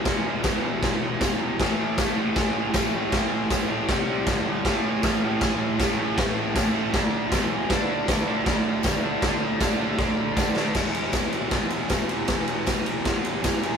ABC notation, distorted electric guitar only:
X:1
M:4/4
L:1/8
Q:1/4=157
K:A
V:1 name="Distorted electric guitar" clef=bass
[E,,B,,E,]2 [E,,B,,E,] [E,,B,,E,] [E,,B,,E,]2 [E,,B,,E,] [E,,B,,E,] | [A,,E,A,]2 [A,,E,A,] [A,,E,A,] [A,,E,A,]2 [A,,E,A,] [A,,E,A,] | [A,,E,A,]2 [A,,E,A,] [A,,E,A,] [=C,=G,=C]2 [=G,,D,G,] [G,,D,G,] | [A,,E,A,]2 [A,,E,A,] [A,,E,A,] [A,,E,A,]2 [A,,E,A,] [A,,E,A,] |
[A,,E,A,]2 [A,,E,A,] [A,,E,A,] [D,A,D]2 [E,,B,,E,] [E,,B,,E,] | [D,A,D]2 [D,A,D] [D,A,D] [D,A,D]2 [D,A,D] [D,A,D] | [D,A,D]2 [D,A,D] [D,A,D] [D,A,D]2 [D,A,D] [D,A,D] | [E,,B,,E,]2 [E,,B,,E,] [B,,E,] [E,,B,,E,]2 [E,,B,,E,] [B,,E,] |
[E,,B,,E,]2 [E,,B,,E,] [B,,E,] [E,,B,,E,]2 [E,,B,,E,] [B,,E,] |]